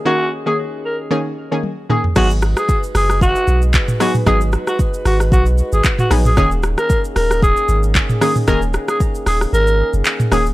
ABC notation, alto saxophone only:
X:1
M:4/4
L:1/16
Q:"Swing 16ths" 1/4=114
K:G#m
V:1 name="Alto saxophone"
F2 z G z2 A z6 z G z | F z2 G2 z G2 F3 z3 F z | G z2 F z2 F z F z2 G z F z G | G z2 A2 z A2 G3 z3 G z |
A z2 G z2 G z A3 z3 G z |]